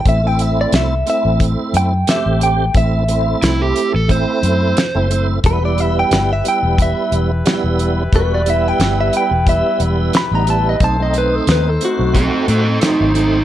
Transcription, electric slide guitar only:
X:1
M:4/4
L:1/16
Q:"Swing 16ths" 1/4=89
K:Em
V:1 name="Electric slide guitar"
z16 | z4 E G2 A c6- c z | z16 | z16 |
z8 [CA]2 [CA]2 [F,^D]2 [F,D]2 |]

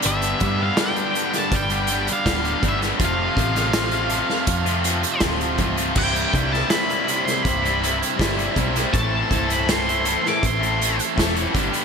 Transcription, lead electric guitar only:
X:1
M:4/4
L:1/16
Q:1/4=81
K:Am
V:1 name="Lead electric guitar"
e3 f g3 a g3 f3 e2 | f12 z4 | g3 a b3 c' b3 z4 z | a3 b c'3 d' c'3 z4 z |]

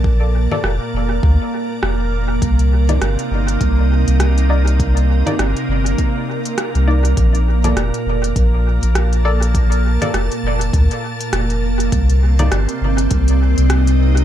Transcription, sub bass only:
X:1
M:4/4
L:1/16
Q:"Swing 16ths" 1/4=101
K:Cdor
V:1 name="Sub bass" clef=bass
B,,,3 z F,,, z F,,,2 D,, z3 F,,,4 | C,,4 G,,, z G,,,2 C,,3 C,,4- C,,- | C,,3 z G,,, z G,,,2 z4 z C,,3 | B,,,4 F,,, z F,,,2 B,,,3 B,,,4- B,,,- |
B,,,3 z F,,, z F,,,2 D,, z3 F,,,4 | C,,4 G,,, z G,,,2 C,,3 C,,4- C,, |]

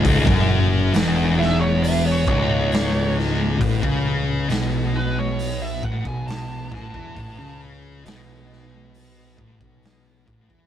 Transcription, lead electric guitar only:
X:1
M:4/4
L:1/16
Q:1/4=68
K:Alyd
V:1 name="Lead electric guitar"
z6 e c e c c4 z2 | z6 B c2 e f g a2 a2- | a2 z12 z2 |]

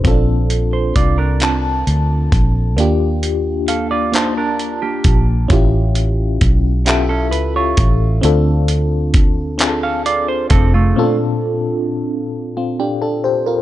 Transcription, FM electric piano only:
X:1
M:6/8
L:1/16
Q:3/8=44
K:Bb
V:1 name="FM electric piano"
[C_D=DFA]4 z2 [CDFa]4 z2 | [B,DFG]4 z2 [B,DFa]4 z2 | [^C=EFG]4 z2 [CFA=e]4 z2 | [CDFA]4 z2 [CDF_A=A]4 z2 |
[B,,C_D=DFA]4 z3 [CF] [DG] [DA] [Gc] [FB] |]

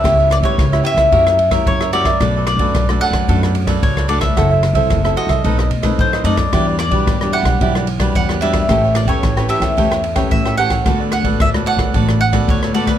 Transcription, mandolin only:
X:1
M:4/4
L:1/16
Q:1/4=111
K:D
V:1 name="Mandolin"
e2 d c3 e6 c2 d2- | d2 d4 f6 c2 d e- | e6 _e6 =c2 d2- | d2 d4 f6 f2 e2- |
e2 d c3 e6 e2 f2- | f2 f2 e2 f4 f2 c2 d B |]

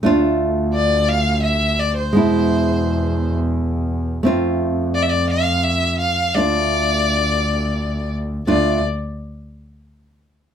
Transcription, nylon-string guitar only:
X:1
M:3/4
L:1/8
Q:1/4=85
K:none
V:1 name="Nylon-string guitar"
[A,DF]6 | [B,,^G,E]6 | [A,CF]6 | [A,DF]6 |
[A,DF] z4 z |]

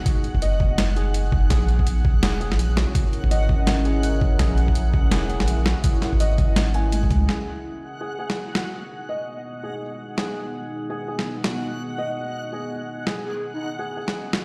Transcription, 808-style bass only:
X:1
M:4/4
L:1/16
Q:"Swing 16ths" 1/4=166
K:G#m
V:1 name="808-style bass" clef=bass
z3 F,,,8- F,,,3 F,,,2 | A,,,8 E,,,3 A,,,4 z | z3 G,,,12- G,,, | A,,,8 E,,,3 A,,,4 z |
z3 G,,,8- G,,,3 C,,2 | z16 | z16 | z16 |
z16 | z16 |]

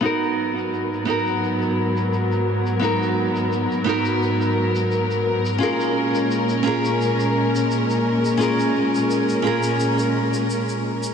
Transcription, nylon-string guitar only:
X:1
M:4/4
L:1/8
Q:1/4=86
K:G#dor
V:1 name="Nylon-string guitar"
[B,DFA]3 [B,DFA]4- [B,DFA] | [B,DFA]3 [B,DFA]4- [B,DFA] | [CEGA]3 [CEGA]4- [CEGA] | [CEGA]3 [CEGA]4- [CEGA] |]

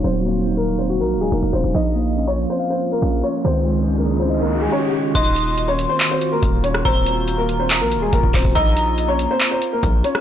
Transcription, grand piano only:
X:1
M:4/4
L:1/16
Q:1/4=141
K:Ebdor
V:1 name="Grand piano"
[Cc]4- [Cc] [B,B]2 [Cc]2 [B,B]2 [A,A] [B,B]2 [Cc]2 | [Ee]4- [Ee] [Dd]2 [Cc]2 [Cc]2 [B,B]3 [Dd]2 | [Cc]4- [Cc] [B,B]2 [Cc]2 [B,B]2 [A,A] [Dd]4 | [Ee]4- [Ee] [Dd]2 [Cc]2 [Cc]2 [B,B]3 [Dd]2 |
[Cc]4- [Cc] [B,B]2 [Cc]2 [B,B]2 [A,A] [B,B]2 [Cc]2 | [Ee]4- [Ee] [Dd]2 [Cc]2 [Cc]2 [B,B]3 [Dd]2 |]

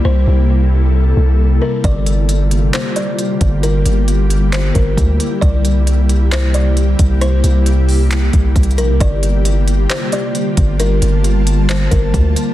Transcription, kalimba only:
X:1
M:4/4
L:1/8
Q:1/4=134
K:Gdor
V:1 name="Kalimba"
c6- c B | d4 c d3 | B4 c B3 | d4 c d3 |
c6- c B | d4 c d3 | B4 c B3 |]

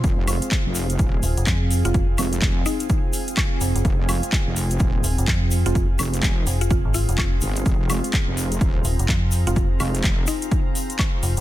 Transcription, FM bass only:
X:1
M:4/4
L:1/16
Q:"Swing 16ths" 1/4=126
K:Fm
V:1 name="FM bass" clef=bass
z8 z2 E,,, F,,, F,,3 F,,,- | F,,,2 z12 F,,, F,,, | z8 z2 E,,, F,,, F,,3 F,,,- | F,,,2 z4 F,,,3 A,,,2 F,,,3 z2 |
z8 z2 E,,, F,,, F,,3 F,,,- | F,,,2 z12 F,,, F,,, |]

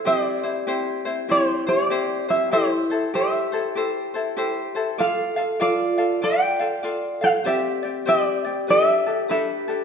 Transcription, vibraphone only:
X:1
M:4/4
L:1/8
Q:"Swing" 1/4=97
K:C
V:1 name="Vibraphone"
G4 E G2 G | E2 G4- G z | A2 F2 d3 A | G2 G2 G2 G2 |]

